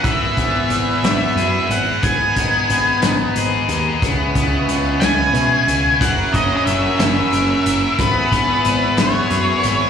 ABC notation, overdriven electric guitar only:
X:1
M:6/8
L:1/8
Q:3/8=60
K:Elyd
V:1 name="Overdriven electric guitar"
[E,B,EG]6 | [B,DG]6 | [G,CEG]6 | [F,CEA]6 |
[B,EG]6 |]